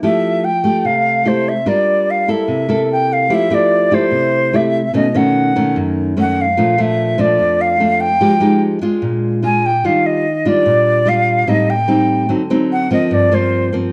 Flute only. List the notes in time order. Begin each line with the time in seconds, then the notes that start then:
0.04 E5
0.44 G5
0.86 F5
1.28 C5
1.49 E5
1.68 D5
2.10 F5
2.31 E5
2.92 G5
3.13 F5
3.34 E5
3.54 D5
3.94 C5
4.56 E5
4.96 D#5
5.17 F#5
6.20 F#5
6.41 F5
6.81 E5
7.20 D5
7.61 F5
8.00 G5
9.45 G#5
9.66 G5
9.86 F5
10.06 D#5
10.48 D5
11.09 F5
11.49 D#5
11.70 G5
12.72 F#5
12.93 D#5
13.14 D5
13.34 C5